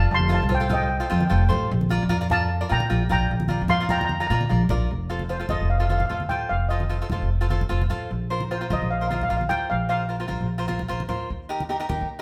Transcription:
Already playing: F4 A4 D5 A5
0.11 F1 A5 C6
0.19 high conga
0.28 F4 A4 C5, high conga
0.32 F5 A5
0.43 C2
0.49 F4 A4 C5, low conga
0.55 G5
0.60 F4 A4 C5
0.69 F4 A4 C5 D#5, low conga
0.74 G5
0.83 G5
0.89 G5
0.98 F4 A4 C5 G5
1.05 G5
1.10 F2 F4 A4 C5 G5
1.20 G5, high conga
1.27 F1 F4 A4 C5 G5
1.33 G5
1.42 G5
1.49 A1 F4 A4 C5, low conga
1.71 A#1
1.81 high conga
1.89 F4 A#4 D5, high conga
2.03 F2
2.09 F4 A#4 D5, low conga
2.21 F4 A#4 D5
2.30 F4 A#4 D5 F5 A5, low conga
2.61 F4 A#4 D5
2.69 A#2 F4 A#4 D5 G5 A#5
2.80 high conga
2.90 A#1 F4 A#4 D5
3.09 A#1 F4 A#4 D5 G5 A#5, low conga
3.31 A#1
3.40 high conga
3.48 F4 A#4 D5, high conga
3.62 F2
3.68 F4 A#4 D5 F5 C6, low conga
3.80 F4 A#4 D5
3.89 F4 A#4 D5 G5 A#5, low conga
3.98 A#5, high conga
4.05 A#5
4.09 A#5, high conga
4.20 F4 A#4 D5 A#5
4.27 A#2 F4 A#4 A#5
4.31 D5 A#5
4.41 high conga
4.49 A#1 F4 A#4 D5
4.69 A#1 F4 A#4 D5, low conga
4.91 F1
5.10 F4 A4 C5
5.19 high conga
5.29 F4 A4 C5
5.40 F4 A4 C5
5.49 F1 F4 A4 C5 D#5, high conga, low conga
5.61 F1
5.70 F5
5.78 F4 A4 C5 F5
5.85 F5
5.89 F4 A4 C5 F5, high conga
5.98 F5, low conga
6.06 F4 F5
6.10 F1 A4 C5
6.14 F5
6.20 high conga
6.29 F4 A4 C5 G5, low conga
6.49 F1 F5
6.69 F4 A4 C5 D#5
6.80 high conga
6.89 F4 A4 C5
7.01 F4 A4 C5
7.10 F1 F4 A4 C5, high conga, low conga
7.22 F1
7.41 F4 A4 C5
7.50 F4 A4 C5, high conga
7.61 low conga
7.69 F1 F4 A4 C5
7.82 high conga
7.90 F4 A4 C5, low conga
8.11 A#1
8.30 F4 A#4 C5
8.40 high conga
8.51 F4 A#4 C5
8.61 F4 A#4 C5
8.70 A#1 F4 A#4 C5 D#5, high conga, low conga
8.82 A#1
8.90 F5
9.00 F4 A#4 C5 F5
9.08 F4 A#4 C5 F5, high conga
9.14 F5
9.21 F5, low conga
9.29 A#1 F4 A#4 C5 F5
9.37 F5
9.41 high conga
9.49 F4 A#4 C5 G5, low conga
9.70 A#1 F5
9.89 F4 A#4 C5 F5
10.09 F4 A#4 C5
10.20 F4 A#4 C5
10.28 A#1 F4 A#4 C5, high conga
10.41 A#1
10.58 F4 A#4 C5
10.68 F4 A#4 C5, high conga
10.79 low conga
10.88 A#1 F4 A#4 C5
11.00 high conga
11.09 F4 A#4 C5, low conga
11.30 D#2
11.49 D#4 G4 A#4
11.60 high conga
11.69 D#4 G4 A#4
11.80 D#4 G4 A#4
11.89 D#2 D#4 G4 A#4, high conga, low conga
12.01 D#2

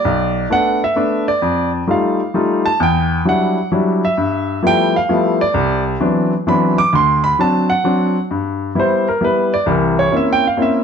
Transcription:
Already playing: D5
0.05 B1
0.50 A3 B3 D4 F#5
0.84 E5
0.96 A3 B3 D4
1.28 D5
1.42 F2
1.87 G3 A3 D#4 F4 F5
2.34 G3 A3 D#4 F4
2.66 A5
2.80 E2 G5
3.25 F#3 G3 D4 E4 F#5
3.72 F#3 G3 D4 E4
4.05 E5
4.17 G2
4.62 F3 G3 A3 B3 E4
4.67 G5
4.96 F5
5.09 F3 G3 A3 B3 E4
5.41 D5
5.54 C2
6.00 E3 F#3 B3 C4 D4
6.47 E3 F#3 B3 C4 D4 B5
6.78 D6
6.93 D2 C6
7.24 B5
7.39 F#3 C4 D4 A5
7.70 F#5
7.84 F#3 C4 D4
8.31 G2
8.75 G3 B3 E4
8.79 C5
9.08 A#4
9.21 G3 B3 E4 B4
9.54 D5
9.66 C2 E3
9.71 A#4
9.99 C#5
10.12 A#3 C4 C#4 E4
10.16 E5
10.33 G5
10.47 F5
10.57 A#3 C4 C#4 E4
10.62 E5

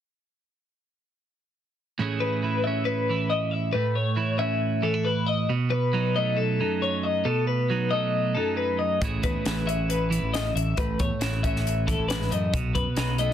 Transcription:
1.99 A2 E3 C#4 E4 G#4
2.20 B4
2.43 E3 E4
2.64 C#4 E5
2.85 B4
3.09 E3 E4
3.30 D#5
3.51 E5
3.73 A2 B4
3.95 C#5
4.16 E3 E4
4.38 C#4 E5
4.82 E3 C#4 A4
4.94 E4
5.05 B4
5.27 D#5
5.49 B2
5.70 B4
5.93 F#3 D#4
6.16 A3 D#5
6.37 A4
6.60 F#2 D#4
6.82 C#5
7.03 D#5
7.25 B2 A4
7.47 B4
7.70 F#3 D#4
7.91 A3 D#5
8.35 F#2 D#4 A4
8.57 B4
8.79 D#5
9.01 A1 A2 E3 C#4 E4 G#4, kick, closed hi-hat
9.23 E2 B4, kick, closed hi-hat
9.45 A1 E3 E4, snare, closed hi-hat
9.66 C#4 E5, closed hi-hat
9.89 B4, closed hi-hat
10.10 E3 E4, closed hi-hat
10.23 A1
10.34 D#5, snare, closed hi-hat
10.56 A1 E5, closed hi-hat
10.77 A1 A2 B4, kick, closed hi-hat
10.99 E2 C#5, kick, closed hi-hat
11.21 A1 E3 E4, snare, closed hi-hat
11.43 C#4 E5, kick, closed hi-hat
11.56 snare
11.67 closed hi-hat
11.87 E3 E4 A4, kick, closed hi-hat
11.98 A1
12.08 G#2 B4, snare, closed hi-hat
12.22 snare
12.31 F#2 A2 D#5, closed hi-hat
12.54 B1 B2, kick, closed hi-hat
12.75 F#2 B4, kick, closed hi-hat
12.96 B1 F#3 D#4, snare, closed hi-hat
13.18 A3 D#5, closed hi-hat

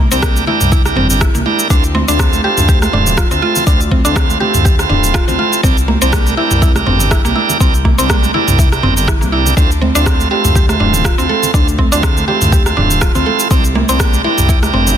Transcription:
0.00 A#3
0.12 C2 C4 D4 E4 G4 A#4, shaker
0.23 A#3, kick, cross-stick, shaker
0.36 high conga, shaker
0.47 D4 E4 G4 A#4, high conga, low conga
0.61 C2, mid tom, shaker
0.72 E4, kick, shaker
0.86 D4 E4 G4 A#4, cross-stick, shaker
0.96 G1 C4, mid tom, low conga
1.10 D4 E4 G4 A#4, shaker
1.21 E4, kick, cross-stick, shaker
1.35 C2 A#3, low conga, shaker
1.46 D4 E4 G4 A#4, high conga
1.59 shaker
1.70 D2 C4 D4 E4 F4 A4, kick, shaker
1.84 shaker
1.95 C4, high conga
2.08 D2 C4 D4 E4 F4 A4, shaker
2.19 C4, kick, cross-stick, shaker
2.33 high conga, shaker
2.44 C4 E4 F4 G4 A4, high conga
2.57 D2, mid tom, shaker
2.69 G4, kick, shaker
2.82 C4 E4 F4 A4, cross-stick, high conga, shaker
2.93 D1 D4, mid tom, high conga, low conga
3.07 low conga, shaker
3.18 F4, kick, cross-stick, shaker
3.31 D2 C4 E4 F4 A4, shaker
3.42 F4, high conga
3.56 low conga, shaker
3.67 D2 C4 D4 E4 F4 A4, kick, shaker
3.81 shaker
3.91 C4, kick, high conga
4.05 D2 C4 D4 E4 F4 A4, shaker
4.16 C4, kick, cross-stick, shaker
4.30 high conga, shaker
4.40 C4 E4 F4 G4 A4, high conga, low conga
4.54 D2, mid tom, shaker
4.65 G4, kick, shaker
4.79 C4 E4 F4 A4, cross-stick, shaker
4.89 D1 D4, mid tom, low conga
5.04 shaker
5.14 F4, kick, cross-stick, shaker
5.28 D2 C4 E4 F4 A4, low conga, shaker
5.39 F4, high conga
5.53 shaker
5.63 C2 C4 D4 E4 G4 A#4, kick, shaker
5.78 shaker
5.88 A#3, high conga
6.02 C2 C4 D4 E4 G4 A#4, shaker
6.13 A#3, kick, cross-stick, shaker
6.27 high conga, shaker
6.37 D4 E4 G4 A#4, high conga
6.51 C2, mid tom, shaker
6.62 E4, kick, shaker
6.76 D4 E4 G4 A#4, cross-stick, high conga, shaker
6.86 G1 C4, mid tom, high conga, low conga
7.00 low conga, shaker
7.11 E4, kick, cross-stick, shaker
7.25 C2 A#3 D4 E4 G4 A#4, shaker
7.36 E4, high conga
7.50 low conga, shaker
7.60 C2 C4 D4 E4 G4 A#4, kick, shaker
7.74 shaker
7.85 A#3, kick, high conga
7.98 C2 C4 D4 E4 G4 A#4, shaker
8.10 A#3, kick, cross-stick, shaker
8.24 high conga, shaker
8.34 D4 E4 G4 A#4, high conga, low conga
8.48 C2, mid tom, shaker
8.59 E4, kick, shaker
8.72 D4 E4 G4 A#4, cross-stick, shaker
8.83 G1 C4, mid tom, low conga
8.97 D4 E4 G4 A#4, shaker
9.08 E4, kick, cross-stick, shaker
9.21 C2 A#3, low conga, shaker
9.32 D4 E4 G4 A#4
9.46 low conga, shaker
9.57 D2 C4 D4 E4 F4 A4, kick, shaker
9.71 shaker
9.81 C4, high conga
9.95 D2 C4 D4 E4 F4 A4, shaker
10.06 C4, kick, cross-stick, shaker
10.20 high conga, shaker
10.30 C4 E4 F4 G4 A4, high conga
10.45 D2, mid tom, shaker
10.56 G4, kick, shaker
10.69 C4 E4 F4 A4, cross-stick, high conga, shaker
10.80 D1 D4, mid tom, high conga, low conga
10.93 low conga, shaker
11.05 F4, kick, cross-stick, shaker
11.18 D2 C4 E4 F4 A4, shaker
11.29 A4, high conga
11.43 low conga, shaker
11.54 D2 C4 D4 E4 F4 A4, kick, shaker
11.68 shaker
11.78 C4, kick, high conga
11.92 D2 C4 D4 E4 F4 A4, shaker
12.03 C4, kick, cross-stick, shaker
12.17 high conga, shaker
12.28 C4 E4 F4 G4 A4, high conga, low conga
12.42 D2, mid tom, shaker
12.52 G4, kick, shaker
12.66 C4 E4 F4 A4, cross-stick, shaker
12.77 D1 D4, mid tom, low conga
12.91 shaker
13.02 F4, kick, cross-stick, shaker
13.15 D2 C4 E4 F4 A4, low conga, shaker
13.26 A4, high conga
13.40 shaker
13.51 C2 C4 D4 E4 G4 A#4, kick, shaker
13.65 shaker
13.75 A#3, high conga
13.89 C2 C4 D4 E4 G4 A#4, shaker
14.00 A#3, kick, cross-stick, shaker
14.13 high conga, shaker
14.24 D4 E4 G4 A#4, high conga
14.38 C2, mid tom, shaker
14.49 E4, kick, shaker
14.63 D4 E4 G4 A#4, cross-stick, high conga, shaker
14.73 G1 C4, mid tom, high conga, low conga
14.87 low conga, shaker

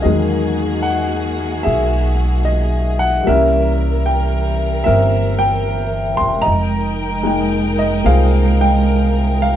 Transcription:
Already playing: G#4
0.02 E2 D#3 F#3 G#3 A#3 F#4 G#4 D#5
0.08 D#3
0.83 F#5
1.63 B1 G#4 E5
2.45 D#5
2.99 F#5
3.23 G3 A#3 A#4 E5
3.28 C2 E3 C#4 A#4
3.34 E4
4.06 G5
4.84 A#3 A#4 E5
4.88 G1 C4
5.39 G5
6.17 E1 C6
6.42 D#5 A#5
6.46 F1 G#3 D#4 A#4 G5
7.23 G#3 A#3 D#4 G5
7.79 D#5
8.04 C2 A#3 C4 F4 G#4 F5
8.61 G5
9.42 F5

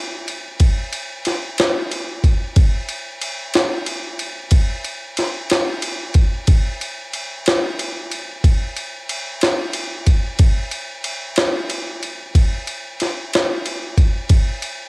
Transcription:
0.28 ride
0.60 kick, ride
0.93 ride
1.25 snare, ride
1.58 snare, ride
1.91 ride
2.24 kick, ride
2.56 kick, ride
2.89 ride
3.21 ride
3.54 snare, ride
3.86 ride
4.19 ride
4.51 kick, ride
4.84 ride
5.17 snare, ride
5.50 snare, ride
5.82 ride
6.14 kick, ride
6.47 kick, ride
6.81 ride
7.13 ride
7.46 snare, ride
7.79 ride
8.11 ride
8.44 kick, ride
8.77 ride
9.09 ride
9.41 snare, ride
9.73 ride
10.06 kick, ride
10.39 kick, ride
10.71 ride
11.04 ride
11.36 snare, ride
11.70 ride
12.03 ride
12.35 kick, ride
12.67 ride
13.00 snare, ride
13.33 snare, ride
13.66 ride
13.98 kick, ride
14.29 kick, ride
14.62 ride

